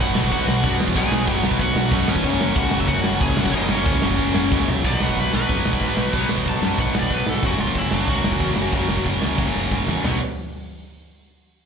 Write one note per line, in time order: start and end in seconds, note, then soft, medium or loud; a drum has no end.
0.00 0.14 F#1 loud
0.00 0.18 B2 loud
0.00 0.94 B2 medium
0.00 0.16 F#3 medium
0.00 0.96 F#3 medium
0.00 0.14 B3 loud
0.00 0.96 B3 loud
0.00 0.96 D#4 loud
0.00 0.30 F#4 medium
0.00 0.31 F#5 loud
0.14 0.30 B1 medium
0.14 0.61 B2 medium
0.14 0.64 F#3 medium
0.14 0.62 B3 loud
0.14 snare loud
0.24 kick medium
0.32 0.47 B1 loud
0.32 0.77 F#4 medium
0.32 0.77 F#5 loud
0.32 kick loud
0.32 ride medium
0.48 0.63 B1 loud
0.48 snare loud
0.62 0.79 F#2 medium
0.62 0.94 B2 medium
0.62 0.97 F#3 medium
0.62 0.96 B3 medium
0.62 kick loud
0.62 ride medium
0.80 0.95 E2 medium
0.80 snare loud
0.88 kick medium
0.95 1.11 B1 loud
0.95 2.24 B2 medium
0.95 1.43 B2 medium
0.95 2.25 F#3 medium
0.95 1.45 F#3 loud
0.95 2.25 B3 loud
0.95 2.25 D#4 loud
0.95 1.42 G#4 medium
0.95 1.42 G#5 loud
0.95 kick loud
0.95 ride medium
0.99 1.42 B3 loud
1.12 1.27 B1 loud
1.12 snare loud
1.27 1.43 F#1 loud
1.27 kick loud
1.27 ride medium
1.43 1.59 B1 loud
1.43 1.90 B2 medium
1.43 1.94 F#3 medium
1.43 1.91 B3 medium
1.43 snare loud
1.51 kick medium
1.59 1.75 B1 loud
1.59 2.06 F#4 medium
1.59 2.11 F#5 medium
1.59 kick loud
1.59 ride medium
1.75 1.91 B1 loud
1.75 snare loud
1.92 2.08 F#2 loud
1.92 2.23 B2 medium
1.92 2.28 F#3 medium
1.92 kick loud
1.92 ride medium
1.96 2.26 B3 medium
2.08 2.23 E2 loud
2.08 2.54 C#4 medium
2.08 2.54 C#5 medium
2.08 snare loud
2.16 kick loud
2.23 2.39 F#1 loud
2.23 3.52 F#2 medium
2.23 2.76 F#2 loud
2.23 3.53 C#3 loud
2.23 2.73 C#3 loud
2.23 3.55 F#3 loud
2.23 3.54 A#3 loud
2.23 3.54 C#4 loud
2.23 kick loud
2.23 ride medium
2.28 2.72 F#3 loud
2.40 2.55 F#1 medium
2.40 snare loud
2.56 2.72 C#2 loud
2.56 2.80 F#4 medium
2.56 2.80 F#5 loud
2.56 kick loud
2.56 ride medium
2.71 2.88 F#1 loud
2.71 3.22 C#3 medium
2.71 3.25 F#3 loud
2.71 snare loud
2.77 3.21 F#2 medium
2.77 2.88 E5 medium
2.77 kick loud
2.87 3.04 F#1 loud
2.87 3.18 F#4 medium
2.87 3.22 F#5 loud
2.87 kick loud
2.87 ride loud
3.04 3.20 F#1 loud
3.04 snare loud
3.20 3.37 C#2 medium
3.20 3.53 F#2 medium
3.20 3.37 G#4 medium
3.20 3.39 G#5 loud
3.20 kick loud
3.20 ride medium
3.24 3.54 C#3 medium
3.24 3.58 F#3 medium
3.37 3.53 B1 loud
3.37 3.50 F#4 medium
3.37 3.50 F#5 medium
3.37 snare loud
3.46 3.53 C#5 medium
3.46 kick medium
3.53 3.70 F#1 loud
3.53 4.82 F#2 medium
3.53 4.02 F#2 medium
3.53 4.82 C#3 loud
3.53 4.03 C#3 loud
3.53 4.82 F#3 medium
3.53 4.83 A#3 loud
3.53 4.83 C#4 medium
3.53 3.69 D#4 medium
3.53 3.71 D#5 loud
3.53 kick loud
3.53 ride medium
3.58 4.01 F#3 loud
3.69 3.85 F#1 loud
3.69 4.63 C#4 medium
3.69 4.68 C#5 medium
3.69 snare loud
3.85 4.02 C#2 loud
3.85 kick loud
3.85 ride medium
4.02 4.18 F#1 medium
4.02 4.51 C#3 medium
4.02 4.50 F#3 loud
4.02 snare loud
4.06 4.51 F#2 medium
4.11 kick medium
4.18 4.34 F#1 loud
4.18 kick loud
4.18 ride medium
4.34 4.51 F#1 medium
4.34 snare loud
4.51 4.67 C#2 loud
4.51 4.83 F#2 medium
4.51 4.84 C#3 medium
4.51 kick loud
4.51 snare medium
4.56 4.85 F#3 medium
4.68 4.83 B1 medium
4.68 floor tom loud
4.83 4.94 B1 medium
4.83 5.47 B2 medium
4.83 5.36 B2 medium
4.83 5.50 F#3 medium
4.83 5.35 F#3 medium
4.83 5.48 B3 medium
4.83 5.48 D#4 medium
4.83 5.01 D5 medium
4.83 kick loud
4.83 crash loud
4.87 5.32 B3 medium
5.00 5.10 B1 medium
5.00 5.17 F#5 medium
5.00 snare loud
5.09 kick medium
5.17 5.27 B1 loud
5.17 5.34 B4 medium
5.17 kick medium
5.17 open hi-hat medium
5.33 5.43 B1 medium
5.33 6.12 B2 medium
5.33 6.15 F#3 medium
5.33 6.13 B3 medium
5.33 6.29 B4 medium
5.33 snare loud
5.49 5.59 F#2 medium
5.49 6.12 B2 medium
5.49 6.14 F#3 medium
5.49 6.14 B3 medium
5.49 6.14 D#4 medium
5.49 kick loud
5.49 open hi-hat medium
5.65 5.75 B1 medium
5.65 snare loud
5.73 kick medium
5.80 5.91 G#2 medium
5.80 kick medium
5.80 open hi-hat medium
5.97 6.07 B1 medium
5.97 snare loud
6.12 6.24 B1 medium
6.12 6.61 B2 medium
6.12 6.77 B2 medium
6.12 6.78 F#3 medium
6.12 6.64 F#3 loud
6.12 kick loud
6.12 open hi-hat medium
6.16 6.78 B3 loud
6.16 6.61 B3 loud
6.16 6.79 D#4 medium
6.29 6.40 B1 medium
6.29 snare loud
6.38 kick medium
6.45 6.56 B1 medium
6.45 6.79 A5 loud
6.45 kick medium
6.45 open hi-hat medium
6.62 6.72 F#2 medium
6.62 7.44 B2 medium
6.62 7.47 F#3 medium
6.62 7.42 B3 medium
6.62 snare loud
6.78 6.88 B1 loud
6.78 7.42 B2 medium
6.78 7.45 F#3 medium
6.78 7.43 B3 medium
6.78 7.44 D#4 medium
6.78 6.95 F#5 loud
6.78 kick loud
6.78 open hi-hat medium
6.95 7.05 B1 medium
6.95 snare loud
6.99 7.13 D5 medium
6.99 kick medium
7.10 7.21 B1 medium
7.10 7.29 B4 medium
7.10 kick medium
7.10 open hi-hat medium
7.26 7.37 G#2 medium
7.26 7.44 A4 medium
7.26 snare loud
7.43 7.53 F#1 medium
7.43 7.94 F#2 medium
7.43 8.08 F#2 medium
7.43 8.08 C#3 medium
7.43 7.91 C#3 medium
7.43 8.10 F#3 medium
7.43 8.09 A#3 loud
7.43 8.09 C#4 medium
7.43 7.60 F#4 medium
7.43 kick loud
7.43 open hi-hat medium
7.47 7.90 F#3 medium
7.58 7.69 F#1 medium
7.58 7.76 F4 medium
7.58 snare loud
7.67 kick medium
7.75 7.85 F#1 medium
7.75 7.93 E4 medium
7.75 kick loud
7.75 open hi-hat soft
7.91 8.01 F#1 medium
7.91 8.72 F#2 medium
7.91 8.73 C#3 medium
7.91 8.76 F#3 medium
7.91 8.09 D4 loud
7.91 snare loud
8.08 8.18 C#2 medium
8.08 8.71 F#2 medium
8.08 8.71 C#3 medium
8.08 8.72 F#3 medium
8.08 8.73 A#3 medium
8.08 9.04 F#4 loud
8.08 kick loud
8.08 open hi-hat medium
8.12 8.73 C#4 medium
8.23 8.34 F#1 medium
8.23 snare loud
8.32 kick medium
8.40 8.51 E2 medium
8.40 kick loud
8.40 open hi-hat medium
8.56 8.67 F#1 medium
8.56 snare loud
8.72 8.83 F#1 medium
8.72 9.37 F#2 medium
8.72 9.21 F#2 medium
8.72 9.37 C#3 medium
8.72 9.23 C#3 medium
8.72 9.38 F#3 medium
8.72 9.38 A#3 medium
8.72 9.38 C#4 medium
8.72 kick loud
8.72 open hi-hat medium
8.77 9.22 F#3 loud
8.89 8.99 F#1 medium
8.89 snare loud
8.97 kick medium
9.05 9.16 F#1 medium
9.05 kick medium
9.05 open hi-hat medium
9.21 9.32 C#2 medium
9.21 10.04 C#3 medium
9.21 10.03 F#3 medium
9.21 snare loud
9.26 10.05 F#2 medium
9.38 9.48 F#1 medium
9.38 10.03 F#2 medium
9.38 10.03 C#3 medium
9.38 10.03 F#3 medium
9.38 10.04 A#3 medium
9.38 10.04 C#4 medium
9.38 kick loud
9.38 snare medium
9.55 9.65 F#1 medium
9.55 snare medium
9.71 9.81 F#1 medium
9.71 kick loud
9.71 snare medium
9.88 9.98 E2 medium
9.88 snare medium
10.04 10.19 B1 medium
10.04 10.17 B2 medium
10.04 10.18 B2 medium
10.04 10.17 F#3 medium
10.04 10.18 F#3 loud
10.04 10.18 B3 medium
10.04 10.18 B3 loud
10.04 10.18 D#4 medium
10.04 snare medium
10.04 floor tom medium
10.04 open hi-hat medium